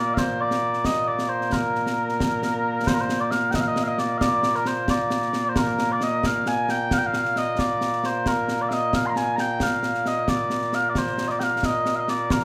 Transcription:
Already playing: A#2 A#3 D5
0.14 C5 F5, concert bass drum, snare
0.41 D5
0.51 snare
0.73 snare
0.85 D#5, concert bass drum, snare
1.08 D5
1.19 snare
1.29 C5
1.41 snare
1.52 A#4, concert bass drum, snare
1.75 snare
1.86 snare
2.09 snare
2.20 concert bass drum, snare
2.43 snare
2.87 C5, concert bass drum, snare
2.94 A#4
2.98 C5, snare
3.09 snare
3.20 D5
3.31 F5, snare
3.51 G5, concert bass drum, snare
3.55 D#5
3.61 F5
3.68 D#5
3.76 snare
3.84 F5
3.88 D#5
3.98 D5, snare
4.18 D5 F5, concert bass drum, snare
4.43 snare
4.54 A#4, snare
4.66 C5, snare
4.88 D5, concert bass drum, snare
5.10 snare
5.22 snare
5.33 snare
5.49 C5
5.56 A#4, concert bass drum, snare
5.67 snare
5.79 snare
5.92 D5
6.01 D#5, snare
6.23 F5, concert bass drum, snare
6.46 G#5, snare
6.69 G5, snare
6.91 F5, concert bass drum, snare
6.98 G5
7.06 F5
7.13 snare
7.25 snare
7.36 D#5, snare
7.59 D5, concert bass drum, snare
7.81 snare
7.93 snare
8.04 C5, snare
8.26 A#4, concert bass drum, snare
8.48 snare
8.61 D5
8.69 F5, snare
8.73 D#5
8.93 F5, concert bass drum, snare
9.06 A#5 C6
9.16 G#5, snare
9.36 G5 A#5, snare
9.60 F5, concert bass drum, snare
9.83 snare
9.94 snare
10.06 D#5, snare
10.28 D5, concert bass drum, snare
10.50 snare
10.61 snare
10.73 F5, snare
10.89 D5
10.95 C5, concert bass drum, snare
11.07 snare
11.18 snare
11.28 D5 D#5, snare
11.39 F5 G5, snare
11.63 D#5, concert bass drum, snare
11.86 snare
11.96 D#5 F5
12.08 D5, snare
12.30 A#4, concert bass drum, snare

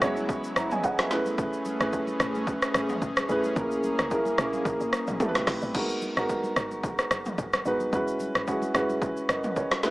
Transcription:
Already playing: F#3 G#3 B3 C#4 E4 F#4 G#4 B4
0.01 F#1 G#3 C#4 E4 F#4 C#5, cross-stick, low conga, shaker
0.17 high conga, shaker
0.29 kick, low conga, shaker
0.44 shaker
0.56 F#1 E5 A#5, cross-stick, high conga, shaker
0.71 D#5 G#5, mid tom, high conga, shaker
0.84 C#5 F#5, kick, shaker
0.99 B4 E5, cross-stick, snare, high conga, shaker
1.11 A3 C#4 E4 G#4 B4, snare, shaker
1.26 high conga, shaker
1.38 kick, low conga, shaker
1.53 shaker
1.65 high conga, shaker
1.80 A1 A3 C#4 E4 G#4 B4, cross-stick, shaker
1.93 kick, shaker
2.07 high conga, shaker
2.20 A1, cross-stick, low conga, shaker
2.35 high conga, shaker
2.47 kick, low conga, shaker
2.62 cross-stick, shaker
2.74 G#1, cross-stick, high conga, shaker
2.89 mid tom, high conga, shaker
3.02 A1, kick, shaker
3.17 cross-stick, high conga, shaker
3.29 A1 A3 C#4 E4 G#4 B4, shaker
3.44 high conga, shaker
3.56 A#1 A#3 C#4 E4 G#4 A#4, kick, low conga, shaker
3.71 shaker
3.83 high conga, shaker
3.99 C#2, cross-stick, shaker
4.11 A#3 C#4 E4 G#4 A#4, kick, shaker
4.25 high conga, shaker
4.38 A#1 A#3 C#4 E4 G#4 A#4, cross-stick, low conga, shaker
4.53 high conga, shaker
4.65 A#1, kick, low conga, shaker
4.81 G#1, shaker
4.93 cross-stick, high conga, shaker
5.07 A#1, mid tom, high conga, shaker
5.20 G3 A3 C4 E4 G4 A4, kick, mid tom, shaker
5.28 B4
5.35 A1, cross-stick, snare, high conga, shaker
5.47 B1, kick, cross-stick, snare, open hi-hat, shaker
5.62 A1, high conga, shaker
5.75 G#3 B3 D#4 F#4 A#4, kick, crash, low conga, shaker
5.90 shaker
6.02 high conga, shaker
6.17 G#1 G#3 B3 D#4 F#4 A#4, cross-stick, shaker
6.29 kick, shaker
6.44 high conga, shaker
6.56 G#1, cross-stick, low conga, shaker
6.71 high conga, shaker
6.83 kick, low conga, shaker
6.99 cross-stick, shaker
7.11 F#1, cross-stick, high conga, shaker
7.26 mid tom, high conga, shaker
7.38 G#1, kick, shaker
7.53 cross-stick, high conga, shaker
7.65 G#1 G#3 B3 D#4 F#4 B4, shaker
7.80 high conga, shaker
7.93 F#1 G#3 C#4 E4 F#4 B4, kick, low conga, shaker
8.08 shaker
8.20 high conga, shaker
8.35 G#1, cross-stick, shaker
8.47 G#3 C#4 E4 F#4 G#4, kick, shaker
8.62 high conga, shaker
8.74 F#1 G#3 C#4 E4 F#4 B4, cross-stick, low conga, shaker
8.89 high conga, shaker
9.02 kick, low conga, shaker
9.17 shaker
9.29 F#1 A#4 D#5, cross-stick, high conga, shaker
9.44 mid tom, high conga, shaker
9.56 G#4 C#5, kick, shaker
9.71 F#4, cross-stick, snare, high conga, shaker
9.83 A3 C#4 E4 G#4 B4, snare, shaker

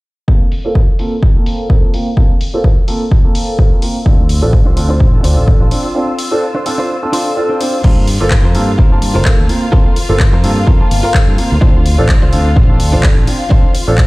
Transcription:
0.28 A#3 C4 F4 A4, kick
0.52 open hi-hat
0.64 A#3 C4 F4 A4
0.75 kick
0.99 A#3 C4 F4 A4, open hi-hat
1.23 kick
1.35 A#3 C4 F4 A4
1.46 open hi-hat
1.69 A#3 C4 F4 A4, kick
1.93 A#3 C4 F4 A#4, open hi-hat
2.17 A#3 C4 F4 A4, kick
2.41 open hi-hat
2.54 A#3 C4 F4 A4
2.64 kick
2.88 A#3 C4 F4 A4, open hi-hat
3.12 kick
3.24 A#3 C4 F4 A4
3.35 open hi-hat
3.58 A#3 C4 F4 A4, kick
3.82 A#3 C4 F4 A#4, open hi-hat
4.05 D2 C4 D4 F4 A4 E6, kick
4.29 open hi-hat
4.42 A1 C4 D4 F4 A4
4.53 kick
4.65 C2 D4 F4 C5
4.76 D2 C4 D4 F4 A4, open hi-hat
4.89 D4 F4 C5
5.00 A1, kick
5.13 C4 D4 F4 A4
5.23 D2 D4 F4 C5, open hi-hat
5.37 A1
5.47 C4 D4 F4 A4, kick
5.60 A1 D4 F4 C5
5.71 C4 D4 F4 C5, open hi-hat
5.95 C4 D4 F4 A4
6.19 open hi-hat
6.31 C4 D4 F4 A4
6.55 D4 F4 C5
6.66 C4 D4 F4 A4, open hi-hat
6.78 D4 F4 C5
7.02 C4 D4 F4 A4
7.13 D4 F4 C5, open hi-hat
7.36 C4 D4 F4 A4 F5
7.49 D4 F4 C5
7.60 C4 D4 F4 C5, open hi-hat
7.84 G2 A#3 C4 F4 A4 A#4 C5 F5, kick, crash
8.07 open hi-hat
8.20 G1 A#3 C4 F4 A4
8.31 muted clean electric guitar stroke, kick, clap
8.44 F2 F4 A4 A#4 C5
8.55 G2 A#3 C4 F4 A4, open hi-hat
8.78 G1 F4 A4 A#4 C5, kick
8.91 A#3 C4 F4 A5
9.02 G2, open hi-hat
9.14 G1 F4 A4 A#4 C5
9.25 A#3 C4 F4 A4, kick, clap
9.38 D2, muted clean electric guitar stroke
9.49 A#3 C4 F4 A#4, open hi-hat
9.72 A#3 C4 F4 A4 A#4 C5, kick
9.96 open hi-hat
10.09 G1 A#3 C4 F4 A4
10.20 muted clean electric guitar stroke, kick, clap
10.32 F2 F4 A4 A#4 C5
10.43 G2 A#3 C4 F4 A4, open hi-hat
10.67 F2 F4 A4 A#4 C5, kick
10.80 A#3 C4 F4 A5, muted fingered electric bass stroke
10.91 G1, open hi-hat
11.03 F4 A4 A#4 C5
11.14 A#3 C4 A4, kick, clap
11.27 G2, muted clean electric guitar stroke
11.38 A#3 C4 F4 A#4, muted fingered electric bass stroke, open hi-hat
11.52 D2
11.61 C4 D4 F4 A4 C5, kick
11.86 open hi-hat
11.98 A1 C4 D4 F4 A4
12.09 muted clean electric guitar stroke, kick, clap
12.22 C2 D4 F4 C5
12.32 D2 C4 D4 F4 A4, open hi-hat
12.56 A1 D4 F4 C5, kick
12.69 C4 D4 F4 A4
12.80 D2, open hi-hat
12.92 A1 D4 F4 C5
13.03 C4 D4 F4, kick, clap
13.16 A1, muted clean electric guitar stroke
13.27 C4 D4 F4 C5, open hi-hat
13.50 C4 D4 F4 A4 C5, kick
13.75 open hi-hat
13.87 A1 C4 D4 F4 A4
13.97 muted clean electric guitar stroke, kick, clap

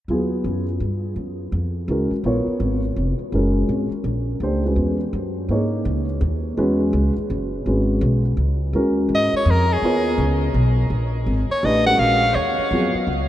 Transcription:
0.08 D#2 F#3 B3 F4 G#4
0.44 F#2
0.80 G2
1.16 F#2
1.52 F2
1.88 C#2 G#3 C#4 F#4 A#4
2.11 muted upright bass stroke
2.24 A#1 B3 F4 A#4 C#5
2.47 muted upright bass stroke
2.60 G#1
2.96 F1
3.19 muted upright bass stroke
3.32 F#1 G#3 C#4 F#4 A#4
3.69 G#1
3.91 muted upright bass stroke
4.04 A#1
4.40 C#2 A3 D4 G4 C5
4.65 G#3 C#4 F#4 B4
4.76 E2
5.13 F#2
5.49 G#2 A#3 D#4 G#4 C#5
5.85 C#2
6.21 D#2
6.57 E2 G#3 C#4 F#4 B4
6.93 C#2
7.17 muted upright bass stroke
7.30 F#1
7.66 G#1 G#3 C#4 F#4 B4
8.01 B1
8.37 C#2
8.73 D#2 G#3 C#4 F#4 A#4
9.09 G#2
9.15 D#5
9.33 C#5, muted upright bass stroke
9.45 F2
9.50 A#4
9.72 G#4
9.82 D#2 B3 F4 A#4 C#5
10.18 C#2
10.54 B1
10.90 A#1
11.26 G#1
11.49 C#5, muted upright bass stroke
11.63 A1 A3 D4 G4 B4 D#5
11.86 G#3 C#4 F#4 A#4 F#5
11.98 A#1 F5
12.32 D#2 C5 C#5
12.58 muted upright bass stroke
12.71 F2 F#3 B3 F4 G#4
12.94 muted upright bass stroke
13.07 C#2

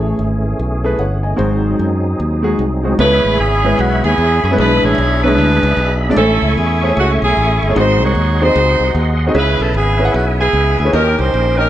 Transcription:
Already playing: A1 A2 E3 A3 C#4 E4 G#4 C#5
0.19 G#1
0.59 B1
0.84 A3 E4 G#4 B4
0.99 G1 C#5 F#5
1.23 D#5 G#5
1.36 G#1 G#2 F#3 G#3 C4 D#4 F#4 C5
1.79 F#2
2.20 D#2
2.43 G#3 D#4 F#4 G#4
2.59 C2
2.83 G#3 D#4 F#4 C5
2.98 C#2 C#3 G#3 B3 C#4 E4 G#4 A4 B4 C#5 E5 B5
3.05 B4
3.25 A1
3.39 G#1 B3 E4 G#4
3.64 G#3 B3 C#4 E4 B4
3.79 B1 B3 F#4
4.04 D#2 B3 E4 G#4
4.18 E2
4.44 F#2 G#4
4.51 G#3 B3 C#4 E4 B4
4.58 B1 B2 G#3 B3 D4 E4 G#4 B4
4.83 A1 E4 G#4 C#5
4.98 B1
5.22 F#3 B3 D4 E4 G#4 B4 C#5
5.27 G#3
5.38 D2
5.63 C#2
5.77 B1
6.09 G#3 B3 D4 E4 D5
6.16 A1 A2 A3 C#4 E4 A4 C5 G#5 C#6
6.22 C#5
6.42 C#2
6.57 E2 G#4
6.83 A3 C#4 E4 G#4 C5
6.89 C#5
6.97 C#2 C#4 F#4
7.22 B1 C#4 E4 G#4
7.37 A1
7.62 G1 G#4
7.68 A3 C#4 E4 G#4 C#5
7.75 G#1 G#2 B3 D#4 F#4 G#4 D#5 F#5 C6
7.79 C4 C5
8.01 C2 F#4 C#5
8.15 D#2
8.41 C4 D#4 F#4 G#4 C5 D5
8.47 D#5
8.55 C#2
8.80 C2
8.95 D#2
9.27 C4 D#4 F#4 G#4 D#5
9.34 C#2 C#3 C#4 E4 G#4 B4 E5 G#5
9.60 B1 A4
9.74 G#1 B3 E4 G#4
9.99 C#4 E4 G#4 B4 E5
10.05 F#5
10.14 B1 B3 F#4
10.40 B3 E4 G#4
10.53 C#2
10.79 D2 G#4
10.85 C#4 E4 G#4 B4 C#5
10.92 D#2 D#3 C#4 D#4 F#4 G4 A#4 D#5 G5
10.97 G4
11.18 C2 G4 C5
11.34 A#1
11.57 C#4 D#4 G4 A#4 D#5

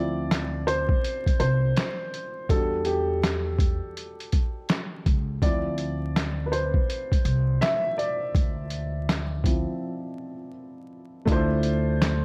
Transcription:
Already playing: D2 F3 C4 E4 D5
0.31 snare, clap, closed hi-hat
0.67 C5, closed hi-hat
0.89 kick
1.04 closed hi-hat
1.26 muted upright bass stroke, kick, closed hi-hat
1.40 C2 C5, closed hi-hat
1.77 snare, clap, closed hi-hat
2.14 closed hi-hat
2.49 E2 G3 D4 F#4 A4, kick, closed hi-hat
2.85 G4, closed hi-hat
3.24 snare, clap, closed hi-hat
3.59 kick, closed hi-hat
3.97 closed hi-hat
4.20 closed hi-hat
4.32 kick, closed hi-hat
4.69 snare, clap, closed hi-hat
5.06 C#2, kick, closed hi-hat
5.42 D2 F3 C4 E4 D5, kick, closed hi-hat
5.78 closed hi-hat
6.16 snare, clap, closed hi-hat
6.46 B4
6.52 C5, closed hi-hat
6.74 kick
6.90 closed hi-hat
7.12 muted upright bass stroke, kick, closed hi-hat
7.25 C2, closed hi-hat
7.61 E5, snare, clap, closed hi-hat
7.98 D5, closed hi-hat
8.35 D2, kick, closed hi-hat
8.70 closed hi-hat
9.09 snare, clap, closed hi-hat
9.44 F3 C4 E4, kick, closed hi-hat
11.25 D2 A3 D4 E4, kick, closed hi-hat
11.30 F4 C5
11.63 closed hi-hat
12.02 snare, clap, closed hi-hat

